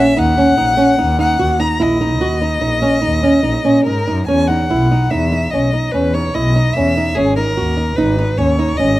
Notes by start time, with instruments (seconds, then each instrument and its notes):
Already playing: nylon-string guitar C#4
0.00 violin E5
0.17 double bass D#2, nylon-string guitar D#4, violin F#5
0.38 nylon-string guitar C#4
0.57 double bass A#1, nylon-string guitar D#4
0.77 nylon-string guitar C#4
0.98 double bass D#2, nylon-string guitar D#4
1.19 nylon-string guitar D#4, violin F#5
1.39 double bass D#2, nylon-string guitar F#4
1.60 nylon-string guitar D#4, violin A#5
1.80 double bass A#1, nylon-string guitar E4, violin D#5
2.01 nylon-string guitar D#4
2.21 double bass D#2, nylon-string guitar F#4
2.41 nylon-string guitar D#4
2.61 double bass A#1, nylon-string guitar D#4
2.82 nylon-string guitar C#4
3.02 double bass D#2, nylon-string guitar D#4
3.23 nylon-string guitar C#4
3.43 double bass A#1, nylon-string guitar D#4
3.65 double bass A#2, nylon-string guitar C#4
3.85 double bass G#2, nylon-string guitar D#4, violin A#4
4.07 double bass F#2, nylon-string guitar D#4
4.27 double bass E2, nylon-string guitar C#4, violin G#5
4.48 nylon-string guitar D#4, violin F#5
4.69 double bass B1, nylon-string guitar E4
4.91 nylon-string guitar D#4
5.10 double bass E2, nylon-string guitar D#4, violin E5
5.32 nylon-string guitar D#4
5.51 double bass B1, nylon-string guitar C#4, violin D#5
5.73 nylon-string guitar D#4
5.92 double bass E2, nylon-string guitar C#4, violin B4
6.14 nylon-string guitar D#4, violin C#5
6.34 double bass B1, nylon-string guitar E4, violin D#5
6.56 nylon-string guitar D#4
6.74 double bass E2, nylon-string guitar C#4, violin E5
6.97 nylon-string guitar D#4
7.15 double bass G#1, nylon-string guitar C#4, violin G#4
7.36 nylon-string guitar D#4, violin A#4
7.57 double bass D#2, nylon-string guitar F#4
7.77 nylon-string guitar D#4
7.96 double bass G#1, nylon-string guitar D#4, violin B4
8.18 nylon-string guitar D#4
8.38 double bass D#2, nylon-string guitar C#4, violin C#5
8.59 nylon-string guitar D#4
8.77 double bass G#1, nylon-string guitar C#4, violin D#5